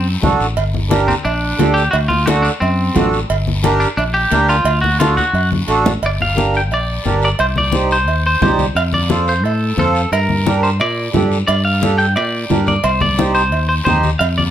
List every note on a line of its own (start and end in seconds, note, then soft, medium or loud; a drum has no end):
0.00 0.16 F#2 medium
0.22 0.38 C2 medium
0.22 0.46 D4 medium
0.22 0.47 F#4 medium
0.22 0.47 A4 medium
0.22 high conga medium
0.22 low conga medium
0.22 short guiro medium
0.39 0.55 A1 medium
0.39 short guiro medium
0.57 1.11 G1 loud
0.57 cowbell loud
0.57 high conga soft
0.57 long guiro medium
0.74 high conga medium
0.90 1.14 D4 medium
0.90 1.15 G4 medium
0.90 1.15 A#4 loud
0.90 cowbell medium
0.90 high conga loud
0.90 short guiro medium
1.08 1.13 C4 medium
1.08 high conga medium
1.08 short guiro medium
1.25 1.52 A#1 medium
1.25 1.78 D4 loud
1.25 cowbell medium
1.25 high conga soft
1.25 long guiro medium
1.59 1.87 D2 medium
1.59 1.83 D4 medium
1.59 1.83 G4 medium
1.59 1.83 A4 medium
1.59 cowbell medium
1.59 high conga medium
1.59 low timbale medium
1.59 short guiro medium
1.74 1.90 G4 loud
1.74 short guiro medium
1.91 2.48 D2 loud
1.91 1.96 F#4 loud
1.91 cowbell loud
1.91 high conga soft
1.91 long guiro medium
2.08 2.26 F4 medium
2.08 high conga medium
2.26 2.51 D4 medium
2.26 2.44 F#4 loud
2.26 2.51 F#4 medium
2.26 2.51 A4 medium
2.26 cowbell medium
2.26 high conga loud
2.26 short guiro medium
2.42 2.47 D4 medium
2.42 short guiro medium
2.60 2.89 F#2 medium
2.60 3.09 C4 medium
2.60 cowbell medium
2.60 high conga soft
2.60 long guiro medium
2.95 3.23 A1 medium
2.95 3.19 D4 medium
2.95 3.19 F#4 medium
2.95 3.19 A4 medium
2.95 cowbell medium
2.95 high conga medium
2.95 low conga medium
2.95 low timbale medium
2.95 short guiro medium
3.13 short guiro medium
3.30 3.84 G1 loud
3.30 cowbell loud
3.30 high conga soft
3.30 long guiro medium
3.47 high conga medium
3.63 3.88 D4 loud
3.63 3.88 G4 medium
3.63 3.88 A#4 loud
3.63 cowbell medium
3.63 high conga loud
3.63 short guiro medium
3.80 3.85 D4 medium
3.80 short guiro medium
3.97 4.25 A#1 medium
3.97 4.02 D4 loud
3.97 cowbell medium
3.97 high conga soft
3.97 long guiro medium
4.14 4.46 G4 loud
4.31 4.59 D2 medium
4.31 4.56 D4 medium
4.31 4.56 G4 medium
4.31 4.56 A#4 loud
4.31 cowbell medium
4.31 high conga medium
4.31 short guiro medium
4.49 4.81 F4 loud
4.49 short guiro medium
4.64 5.20 D2 medium
4.64 cowbell loud
4.64 high conga soft
4.64 long guiro medium
4.81 4.98 F#4 medium
4.81 high conga medium
5.00 5.24 D4 medium
5.00 5.16 F4 loud
5.00 5.24 F#4 medium
5.00 5.24 A4 medium
5.00 cowbell medium
5.00 high conga loud
5.00 short guiro medium
5.17 5.49 F#4 medium
5.17 high conga medium
5.17 short guiro medium
5.33 5.61 F#2 medium
5.33 cowbell medium
5.33 high conga soft
5.33 long guiro medium
5.52 high conga medium
5.68 5.95 A1 medium
5.68 5.92 D4 loud
5.68 5.92 F#4 medium
5.68 5.93 A4 loud
5.68 cowbell medium
5.68 short guiro medium
5.86 low conga medium
5.86 short guiro medium
6.02 6.70 G1 medium
6.02 6.11 D5 loud
6.02 cowbell loud
6.02 high conga soft
6.02 long guiro medium
6.21 6.56 F5 medium
6.21 high conga medium
6.36 6.60 D4 medium
6.36 6.60 G4 medium
6.36 6.60 A#4 medium
6.36 high conga medium
6.36 short guiro medium
6.54 6.62 G5 medium
6.54 short guiro medium
6.70 6.98 A#1 medium
6.70 7.20 D5 loud
6.70 cowbell medium
6.70 high conga soft
6.70 long guiro medium
7.04 7.33 G1 loud
7.04 7.28 D4 medium
7.04 7.29 G4 medium
7.04 7.29 A#4 medium
7.04 high conga medium
7.04 short guiro medium
7.22 7.30 D5 loud
7.22 short guiro medium
7.39 8.07 C2 loud
7.39 7.45 C5 loud
7.39 cowbell loud
7.39 high conga soft
7.39 long guiro medium
7.56 7.92 D5 medium
7.56 high conga medium
7.72 7.97 D#4 medium
7.72 7.97 G4 medium
7.72 7.97 C5 medium
7.72 high conga medium
7.72 short guiro medium
7.91 8.23 C5 medium
7.91 short guiro medium
8.07 8.35 D#2 medium
8.07 cowbell medium
8.07 high conga soft
8.07 long guiro medium
8.26 8.41 C5 medium
8.41 8.69 C2 medium
8.41 8.65 D#4 medium
8.41 8.65 G4 medium
8.41 8.66 C5 loud
8.41 8.65 D5 medium
8.41 high conga medium
8.41 low conga medium
8.41 low timbale medium
8.41 short guiro medium
8.59 high conga medium
8.59 short guiro medium
8.75 9.44 F2 loud
8.75 8.82 F5 loud
8.75 cowbell loud
8.75 high conga soft
8.75 long guiro medium
8.93 9.25 D5 loud
8.93 high conga medium
9.09 9.33 F4 medium
9.09 9.33 A4 medium
9.09 9.34 C5 medium
9.09 high conga loud
9.09 short guiro medium
9.28 9.44 C5 medium
9.28 short guiro medium
9.44 9.71 A2 medium
9.44 9.78 A4 loud
9.44 cowbell medium
9.44 high conga soft
9.44 long guiro medium
9.77 10.05 F2 loud
9.77 10.01 F4 medium
9.77 10.02 A4 medium
9.77 10.10 A4 medium
9.77 10.02 C5 medium
9.77 high conga medium
9.77 short guiro medium
9.95 short guiro medium
10.12 10.81 G2 medium
10.12 10.63 A#4 loud
10.12 cowbell loud
10.12 high conga soft
10.12 long guiro medium
10.29 high conga medium
10.46 10.70 D4 medium
10.46 10.70 G4 medium
10.46 10.70 A#4 medium
10.46 high conga medium
10.46 short guiro medium
10.63 10.68 C5 medium
10.63 short guiro medium
10.80 11.08 A#2 medium
10.80 11.28 D5 loud
10.80 cowbell medium
10.80 high conga soft
10.80 long guiro medium
11.13 11.42 G2 loud
11.13 11.38 D4 medium
11.13 11.38 G4 medium
11.13 11.38 A4 medium
11.13 high conga medium
11.13 low conga medium
11.13 low timbale medium
11.13 short guiro medium
11.32 short guiro medium
11.47 12.17 G2 medium
11.47 11.64 D5 medium
11.47 cowbell loud
11.47 high conga soft
11.47 long guiro medium
11.65 11.97 F5 medium
11.82 12.06 D4 medium
11.82 12.06 G4 medium
11.82 12.06 A4 medium
11.82 high conga medium
11.82 short guiro medium
11.98 12.15 G5 medium
11.98 short guiro medium
12.16 12.44 A#2 medium
12.16 12.64 D5 medium
12.16 cowbell medium
12.16 high conga soft
12.16 long guiro medium
12.50 12.77 G2 medium
12.50 12.74 D4 medium
12.50 12.74 G4 medium
12.50 12.74 A#4 medium
12.50 high conga medium
12.50 low timbale medium
12.50 short guiro medium
12.66 12.84 D5 medium
12.66 high conga medium
12.66 short guiro medium
12.83 13.52 C2 medium
12.83 13.00 C5 medium
12.83 cowbell loud
12.83 high conga soft
12.83 long guiro medium
13.01 13.33 D5 medium
13.01 high conga medium
13.01 low conga medium
13.18 13.42 D#4 medium
13.18 13.42 G4 medium
13.18 13.42 C5 medium
13.18 high conga medium
13.18 short guiro medium
13.35 13.67 C5 medium
13.35 short guiro medium
13.52 13.79 D#2 medium
13.52 cowbell medium
13.52 high conga soft
13.52 long guiro medium
13.69 13.74 C5 medium
13.85 14.14 D#2 medium
13.85 14.10 D#4 medium
13.85 14.10 G4 medium
13.85 14.10 C5 medium
13.85 14.11 D#5 medium
13.85 high conga medium
13.85 low conga medium
13.85 short guiro medium
14.03 high conga medium
14.03 short guiro medium
14.19 14.51 F2 loud
14.19 14.24 F5 loud
14.19 cowbell loud
14.19 high conga soft
14.19 long guiro medium
14.38 14.43 D5 medium
14.38 high conga medium